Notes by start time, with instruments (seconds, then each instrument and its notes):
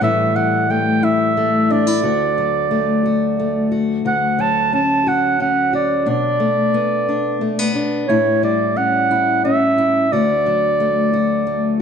0.01 steel-string acoustic guitar A2 E3 G3 A3 E4, clarinet E5
0.36 steel-string acoustic guitar G3, clarinet F#5
0.70 steel-string acoustic guitar A3, clarinet G5
1.03 steel-string acoustic guitar E4, clarinet E5
1.37 steel-string acoustic guitar A3
1.70 steel-string acoustic guitar D4, clarinet D5
1.87 steel-string acoustic guitar E4
2.03 steel-string acoustic guitar D2 F#4
2.38 steel-string acoustic guitar F#3
2.71 steel-string acoustic guitar A3
3.06 steel-string acoustic guitar F#4
3.40 steel-string acoustic guitar A3
3.72 steel-string acoustic guitar F#4
4.05 steel-string acoustic guitar D2 F#4, clarinet F#5
4.39 steel-string acoustic guitar F#3, clarinet A5
4.73 steel-string acoustic guitar C#4, clarinet A5
5.07 steel-string acoustic guitar F#4, clarinet F#5
5.40 steel-string acoustic guitar C#4, clarinet F#5
5.73 steel-string acoustic guitar F#4, clarinet D5
6.06 steel-string acoustic guitar B2 D4, clarinet D5
6.40 steel-string acoustic guitar A3
6.74 steel-string acoustic guitar B3
7.09 steel-string acoustic guitar D4
7.41 steel-string acoustic guitar A3
7.59 steel-string acoustic guitar B3
7.75 steel-string acoustic guitar D4
8.08 steel-string acoustic guitar A2 E4, clarinet C#5
8.43 steel-string acoustic guitar G3, clarinet D5
8.76 steel-string acoustic guitar C#4, clarinet F#5
9.11 steel-string acoustic guitar E4
9.44 steel-string acoustic guitar C#4, clarinet E5
9.78 steel-string acoustic guitar E4
10.12 steel-string acoustic guitar D2 F#4, clarinet D5
10.46 steel-string acoustic guitar F#3
10.80 steel-string acoustic guitar A3
11.13 steel-string acoustic guitar F#4
11.47 steel-string acoustic guitar A3